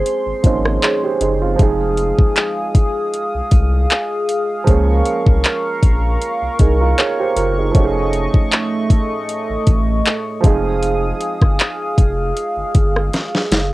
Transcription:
Already playing: F3 A#3 C4 C#4 G#4 C5 C6
0.06 closed hi-hat
0.26 G#1
0.43 G#1 F3 A#3 C4 C#4 D#4, kick, closed hi-hat
0.65 cross-stick
0.82 G#4 C#5, clap, closed hi-hat
1.03 G4 C5
1.21 F#1 D#4 G#4, closed hi-hat
1.42 C4 F4
1.56 F1 F3 G#3 C4 G#4 F5 D#6, kick, closed hi-hat
1.61 D#4 G#4
1.97 closed hi-hat
2.18 C2, kick
2.36 clap, closed hi-hat
2.75 kick, closed hi-hat
3.14 closed hi-hat
3.35 C2
3.51 C2, kick, closed hi-hat
3.90 clap, closed hi-hat
4.29 closed hi-hat
4.64 C#2 F3 G#3 A#3 A#4 C#6, kick, closed hi-hat
4.69 C#4 G#4
5.05 closed hi-hat
5.26 C2, kick
5.44 clap, closed hi-hat
5.83 A#1, kick, closed hi-hat
6.22 closed hi-hat
6.42 C2
6.59 C2 D#4 G#4, kick, closed hi-hat
6.81 F4 A#4
6.98 G#4 C#5, clap, closed hi-hat
7.19 G4 C5
7.36 F#1 F4 A#4, closed hi-hat
7.58 D#4 G#4
7.72 F1 F3 A3 C#4 D#5, kick, closed hi-hat
7.77 D#4 G4
7.85 G#4
8.13 closed hi-hat
8.34 A1, kick
8.52 clap, closed hi-hat
8.90 kick, closed hi-hat
9.29 closed hi-hat
9.50 A1
9.67 A1, kick, closed hi-hat
10.06 clap, closed hi-hat
10.41 F1 F3 G#3 C4 G#4 F5 D#6, kick, closed hi-hat
10.46 D#4 G#4
10.83 closed hi-hat
11.21 closed hi-hat
11.42 G1, kick, cross-stick
11.60 clap, closed hi-hat
11.98 F1, kick, closed hi-hat
12.37 closed hi-hat
12.57 G1
12.75 G1, kick, closed hi-hat
12.96 cross-stick
13.13 snare, closed hi-hat
13.35 snare
13.51 F#1, snare, closed hi-hat

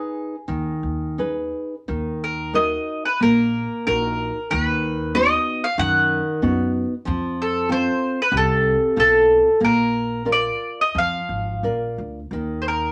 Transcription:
Already playing: D#4 G#4 B4
0.48 D#2 D#3
0.83 D#2
1.18 D#4 G#4 B4
1.88 D#2 D#3
2.24 A#4
2.53 D#4 F#4 A#4 D#5
3.05 B4
3.20 A#1 A#3 A#4
3.86 A#1 D#4 F#4 A#4
4.50 D#2 D#3 B4
5.14 B3 D#4 F#4 D#5
5.64 F5
5.78 F#2 D#3 F#5
6.42 F#2 B3 D#4 F#4
7.05 F2 F3
7.42 A4
7.69 C4 F4 A4 C5
8.22 B4
8.32 C2 C3
8.37 A4
8.96 B1 C4 F4 A4
9.60 A#1 A#3
9.65 A#4
10.25 F4 A#4 D5
10.32 D5
10.81 D#5
10.95 F2 F3 F5
11.29 G#1
11.63 A#1 F4 A#4 D5
11.98 D2
12.31 D#2 D#3
12.62 C5
12.68 A#4

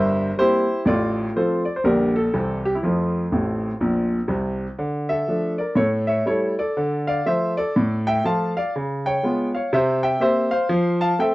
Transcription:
Already playing: G1 G2 A#4 C5 E5
0.37 G3 A#3 C4 E4 G4 C5
0.85 A1 A2 F4 A4 D5
1.36 F3 A3 C4 F4 A4 C5
1.65 D5
1.76 C5
1.84 A#1 A#2 D3 G3 D4 G4 A#4
2.16 A4
2.34 C2 C3 E3 G3 C4
2.65 G4
2.75 E4
2.83 F2 F3 A3 C4 F4
3.32 A1 A2
3.81 A#1 A#2
4.28 C2 C3
4.79 D3
5.09 A4 E5
5.28 F3 A3 D4
5.58 A#4 D5
5.75 A2 A4 C#5
6.07 C#5 E5
6.26 G3 A3 E4 A4 C#5
6.59 A4 D5
6.77 D3
7.07 D5 F5
7.26 F3 A3 F4 C5 E5
7.57 A4 D5
7.76 A2
8.07 E5 G5
8.24 F3 A3 F4 F5 A5
8.57 D5 F5
8.76 C#3
9.06 C#5 G5
9.23 G#3 B3 F4
9.55 C#5 F5
9.73 C3 C5 E5
10.03 E5 G5
10.20 A#3 C4 G4 C5 E5
10.51 C5 F5
10.69 F3
11.01 F5 A5
11.19 A3 C4 A4 E5 G5

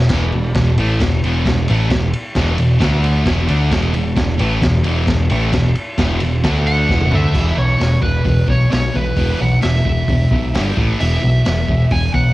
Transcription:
0.09 E1 E2 B2 E3, kick, snare, crash, splash
0.32 E1 E2 B2, ride
0.54 E1 E2 B2, kick, snare, ride
0.78 A1 A2 E3 A3, ride
1.00 E1 E2 B2, kick, snare, ride
1.23 E1 E2 B2 E3, ride
1.45 E1 E2 B2, kick, snare, ride
1.68 A1 A2 E3 A3, ride
1.90 E1 E2 B2, kick, snare, ride
2.14 ride
2.35 E1 E2 B2 E3, kick, snare, ride
2.58 E1 E2 B2, ride
2.79 D2 D3 A3 D4, kick, snare, ride
3.04 ride
3.24 E1 E2 B2 E3, kick, snare, ride
3.47 D2 D3 A3 D4, ride
3.71 E1 E2 B2 E3, kick, snare, ride
3.94 E1 E2 B2, ride
4.16 E1 E2 B2, kick, snare, ride
4.38 A1 A2 E3 A3, ride
4.61 E1 E2 B2, kick, snare, ride
4.84 E1 E2 B2 E3, ride
5.07 E1 E2 B2, kick, snare, ride
5.30 A1 A2 E3 A3, ride
5.53 E1 E2 B2, kick, snare, ride
5.76 ride
5.98 E1 E2 B2 E3, kick, snare, ride
6.20 E1 E2 B2, ride
6.44 D2 D3 A3 D4, kick, snare, ride
6.67 F#5, ride
6.89 E1 E2 B2 E3, kick, snare
7.01 high tom
7.12 D2 D3 A3 D4 E5, mid tom
7.24 floor tom
7.34 E1 E2 B2 E3, kick, crash
7.56 B1 E2 B2 C#5
7.79 E1 E2 B2, snare, open hi-hat
8.02 E1 E2 B2 B4, kick
8.25 E1 E2 B2, kick, open hi-hat
8.47 B1 E2 B2 C#5, kick
8.70 B1 E2 B2 C#5, snare, open hi-hat
8.94 B1 E2 B2 B4
9.16 E1 E2 B2 E3, kick, open hi-hat
9.40 B1 E2 B2 F#5
9.62 E1 E2 B2 E5, snare, open hi-hat
9.85 E1 E2 B2, kick
10.08 E1 E2 B2, kick, open hi-hat
10.31 B1 E2 B2, kick
10.54 G1 G2 D3 G3, snare, open hi-hat
10.77 A1 A2 E3 A3, kick
11.00 E1 E2 B2 E3 E5, open hi-hat
11.22 B1 E2 B2
11.45 E1 E2 B2, snare, open hi-hat
11.68 E1 E2 B2, kick
11.91 E1 E2 B2 G#5, kick, open hi-hat
12.14 B1 E2 B2 F#5, kick

